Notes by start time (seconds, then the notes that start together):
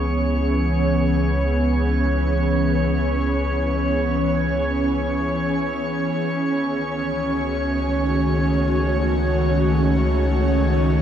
Already playing: C#2 E3 B3 C#4 G#4 C#5
6.17 C#2 D#3
6.67 F#4
6.77 A3